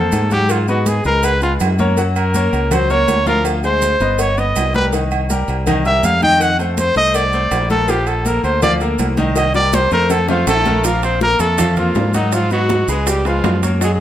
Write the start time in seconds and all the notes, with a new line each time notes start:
Already playing: A#3 A4 C5
0.12 G#2, cowbell, high conga, low agogo, maracas
0.31 F#3 F#4 G4 F#5, high conga, maracas
0.49 F4, cowbell, high conga, low agogo, maracas
0.68 B3 F#4 B4 D#5, high conga, maracas
0.86 G#4, cowbell, high conga, low agogo, maracas
1.04 C#2 G#3 G#4 A#4 B4, high conga, maracas
1.23 B4, cowbell, high conga, low agogo, maracas
1.41 G#3 F4 G#4 B4, high conga, maracas
1.60 F#2, cowbell, high conga, low timbale, low agogo, maracas
1.79 A#3 A#4 C#5, cowbell, high conga, maracas
1.97 F#3 F#4 F#5, cowbell, high conga, low agogo, maracas
2.16 A#4, high conga, low agogo, maracas
2.34 A#3 A#4 C#5, cowbell, high conga, maracas
2.53 C#2, high conga, low agogo, maracas
2.71 F#3 F#4 C5 F#5, cowbell, high conga, low conga, low agogo, maracas
2.90 A#3 A#4 C#5, high conga, maracas
3.08 D2, cowbell, high conga, low timbale, low agogo, maracas
3.26 F3 F4 A#4 F5, high conga, maracas
3.45 cowbell, high conga, low agogo, maracas
3.63 G#3 G#4 C5, high conga, maracas
3.82 cowbell, high conga, low agogo, maracas
4.00 G1 B3 B4 D#5, high conga, maracas
4.18 C#5, cowbell, high conga, low agogo, maracas
4.37 B3 B4 D#5, high conga, maracas
4.56 C2, cowbell, high conga, low timbale, low agogo, maracas
4.74 G3 G4 A#4 B4, cowbell, high conga, maracas
4.92 D#3 D#4 D#5, cowbell, high conga, low agogo, maracas
5.11 high conga, low agogo, maracas
5.30 G3 G4 A#4, cowbell, high conga, maracas
5.48 C2, high conga, low agogo, maracas
5.67 D#3 D#4 D#5, cowbell, high conga, low conga, low agogo, maracas
5.85 G3 G4 A#4 E5, high conga, maracas
6.03 F2 F5, cowbell, high conga, low agogo, maracas
6.22 D#3 D#4 D#5 G5, high conga, maracas
6.40 F#5, cowbell, high conga, low agogo, maracas
6.59 A3 A4 C5, high conga, maracas
6.77 C5, cowbell, high conga, low agogo, maracas
6.96 C2 A3 A4 C5 D#5, high conga, maracas
7.14 D5, cowbell, high conga, low agogo, maracas
7.33 A3 A4 C5, high conga, maracas
7.51 A#1, cowbell, high conga, low timbale, low agogo, maracas
7.70 A3 A4 A#4, cowbell, high conga, maracas
7.88 F3 F4 G4 F5, cowbell, high conga, low agogo, maracas
8.07 A4, high conga, low agogo, maracas
8.25 A#3 A4 A#4, cowbell, high conga, maracas
8.44 D2 C5, high conga, low agogo, maracas
8.62 F3 F4 D5 F5, cowbell, high conga, low conga, low agogo, maracas
8.81 A#3 A4 A#4, high conga, maracas
8.99 C2, cowbell, high conga, low timbale, low agogo, maracas
9.17 D#3 D#4 D#5, high conga, maracas
9.36 D#5, cowbell, high bongo, high conga, low agogo, maracas
9.54 G3 G4 A#4 D5, high bongo, high conga, maracas
9.72 C5, cowbell, high bongo, high conga, low agogo, maracas
9.91 F2 A3 A4 A#4 C5, high conga, maracas
10.10 A4, cowbell, low bongo, high conga, low agogo, maracas
10.28 F3 A3 F4 A4 C5, low bongo, high conga, maracas
10.47 A#1 A3 A4, cowbell, low bongo, high conga, low timbale, low agogo, maracas
10.65 A3 A4 A#4, cowbell, low bongo, high conga, maracas
10.84 F3 A#3 F4 A#4 F5, high bongo, high conga, high timbale, maracas
11.03 C4 C5, high bongo, high conga, high timbale, maracas
11.21 A#3 A4 A#4, high bongo, high conga, low timbale, maracas
11.39 F2 A3 A4, high bongo, high conga, high timbale, maracas
11.58 F3 F4 F5, high bongo, high conga, low conga, high timbale, maracas
11.76 F3 A#3 F4 A4 A#4, high conga, low conga, high timbale, maracas
11.95 G#2, high bongo, low bongo, high conga, low timbale, maracas
12.14 D#3 F#3 D#4 F#4 F#5, high bongo, high conga, high timbale, maracas
12.32 F3 F4, high bongo, high conga, high timbale, maracas
12.51 F#3 B3 F#4 B4 D#5, high bongo, high conga, maracas
12.69 high bongo, high conga, high timbale, low timbale, maracas
12.88 C#2 G#3 G#4 B4, high bongo, high conga, maracas
13.07 G3 G4, high bongo, high conga, high timbale, maracas
13.25 F3 G#3 F4 G#4 B4, high bongo, high conga, high timbale, maracas
13.44 F#2, high bongo, low bongo, high conga, high timbale, low timbale, maracas
13.63 A#3 A#4 C#5, high conga, high timbale, maracas
13.81 F#3 G#3 F#4 G#4 F#5, high bongo, high conga, high timbale, maracas
13.94 G#3 G#4